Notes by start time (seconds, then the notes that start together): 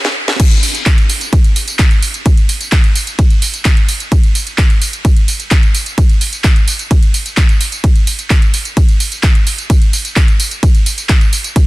0.05 snare
0.28 snare
0.40 kick, closed hi-hat, crash, ride, tambourine
0.51 closed hi-hat, tambourine
0.63 open hi-hat, tambourine
0.75 closed hi-hat, tambourine
0.86 kick, clap, closed hi-hat, ride, tambourine
0.98 closed hi-hat, tambourine
1.09 open hi-hat, tambourine
1.21 closed hi-hat, tambourine
1.33 kick, closed hi-hat, ride, tambourine
1.44 closed hi-hat, tambourine
1.56 open hi-hat, tambourine
1.68 closed hi-hat, tambourine
1.79 kick, clap, closed hi-hat, ride, tambourine
1.91 closed hi-hat, tambourine
2.02 open hi-hat, tambourine
2.14 closed hi-hat, tambourine
2.26 kick, closed hi-hat, ride, tambourine
2.37 closed hi-hat, tambourine
2.49 open hi-hat, tambourine
2.61 closed hi-hat, tambourine
2.72 kick, clap, closed hi-hat, ride, tambourine
2.84 closed hi-hat, tambourine
2.95 open hi-hat, tambourine
3.07 closed hi-hat, tambourine
3.19 kick, closed hi-hat, ride, tambourine
3.30 closed hi-hat, tambourine
3.42 open hi-hat, tambourine
3.54 closed hi-hat, tambourine
3.65 kick, clap, closed hi-hat, ride, tambourine
3.77 closed hi-hat, tambourine
3.89 open hi-hat, tambourine
4.00 closed hi-hat, tambourine
4.12 kick, closed hi-hat, ride, tambourine
4.23 closed hi-hat, tambourine
4.35 open hi-hat, tambourine
4.47 closed hi-hat, tambourine
4.58 kick, clap, closed hi-hat, ride, tambourine
4.70 closed hi-hat, tambourine
4.82 open hi-hat, tambourine
4.93 closed hi-hat, tambourine
5.05 kick, closed hi-hat, ride, tambourine
5.16 closed hi-hat, tambourine
5.28 open hi-hat, tambourine
5.40 closed hi-hat, tambourine
5.51 kick, clap, closed hi-hat, ride, tambourine
5.63 closed hi-hat, tambourine
5.75 open hi-hat, tambourine
5.86 closed hi-hat, tambourine
5.98 kick, closed hi-hat, ride, tambourine
6.09 closed hi-hat, tambourine
6.21 open hi-hat, tambourine
6.33 closed hi-hat, tambourine
6.44 kick, clap, closed hi-hat, ride, tambourine
6.56 closed hi-hat, tambourine
6.68 open hi-hat, tambourine
6.79 closed hi-hat, tambourine
6.91 kick, closed hi-hat, ride, tambourine
7.02 closed hi-hat, tambourine
7.14 open hi-hat, tambourine
7.26 closed hi-hat, tambourine
7.37 kick, clap, closed hi-hat, ride, tambourine
7.49 closed hi-hat, tambourine
7.61 open hi-hat, tambourine
7.72 closed hi-hat, tambourine
7.84 kick, closed hi-hat, ride, tambourine
7.96 closed hi-hat, tambourine
8.07 open hi-hat, tambourine
8.19 closed hi-hat, tambourine
8.30 kick, clap, closed hi-hat, ride, tambourine
8.42 closed hi-hat, tambourine
8.54 open hi-hat, tambourine
8.65 closed hi-hat, tambourine
8.77 kick, closed hi-hat, ride, tambourine
8.89 closed hi-hat, tambourine
9.00 open hi-hat, tambourine
9.12 closed hi-hat, tambourine
9.23 kick, clap, closed hi-hat, ride, tambourine
9.35 closed hi-hat, tambourine
9.47 open hi-hat, tambourine
9.58 closed hi-hat, tambourine
9.70 kick, closed hi-hat, ride, tambourine
9.82 closed hi-hat, tambourine
9.93 open hi-hat, tambourine
10.05 closed hi-hat, tambourine
10.16 kick, clap, closed hi-hat, ride, tambourine
10.28 closed hi-hat, tambourine
10.40 open hi-hat, tambourine
10.51 closed hi-hat, tambourine
10.63 kick, closed hi-hat, ride, tambourine
10.75 closed hi-hat, tambourine
10.86 open hi-hat, tambourine
10.98 closed hi-hat, tambourine
11.09 kick, clap, closed hi-hat, ride, tambourine
11.21 closed hi-hat, tambourine
11.33 open hi-hat, tambourine
11.44 closed hi-hat, tambourine
11.56 kick, closed hi-hat, ride, tambourine